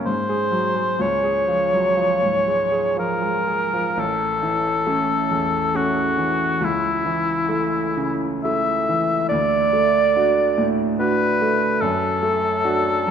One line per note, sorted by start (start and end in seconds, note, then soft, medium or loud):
0.06 0.98 G#2 soft
0.06 1.03 C5 medium
0.29 0.67 G#4 soft
0.51 0.90 F#3 soft
0.75 1.00 G#3 soft
0.99 3.94 C#2 soft
0.99 2.98 C#5 medium
1.23 1.64 G#4 soft
1.48 1.88 F3 soft
1.73 1.98 F#3 soft
1.97 2.37 F3 soft
2.22 2.63 G#2 soft
2.47 2.88 G#3 soft
2.72 3.12 G#4 soft
2.96 3.38 F3 soft
2.96 4.01 A#4 medium
3.21 3.64 G#3 soft
3.47 3.88 G#4 soft
3.73 3.98 F3 soft
3.97 6.58 A1 soft
3.97 5.77 A4 medium
4.43 5.14 E3 soft
4.86 5.27 A3 soft
4.86 5.27 C#4 soft
5.31 6.02 E2 soft
5.75 6.15 A3 soft
5.75 6.16 C#4 soft
5.75 6.65 F#4 medium
6.18 6.62 E3 soft
6.61 9.25 C#2 soft
6.61 8.27 E4 medium
7.05 7.77 E3 soft
7.48 7.92 A3 soft
7.48 7.92 E4 soft
7.97 8.71 C#3 soft
8.44 8.85 A3 soft
8.44 8.85 E4 soft
8.44 9.28 E5 medium
8.89 9.31 E3 soft
9.29 11.77 D2 soft
9.29 10.71 D5 medium
9.73 10.41 A3 soft
10.15 10.54 D4 soft
10.15 10.54 F#4 soft
10.58 11.25 A2 soft
10.99 11.37 D4 soft
10.99 11.37 F#4 soft
10.99 11.82 B4 medium
11.41 11.81 A3 soft
11.81 13.11 F#2 medium
11.81 13.11 A4 medium
12.22 12.90 A3 soft
12.64 13.04 D4 soft
12.64 13.04 F#4 soft
13.07 13.11 F#3 soft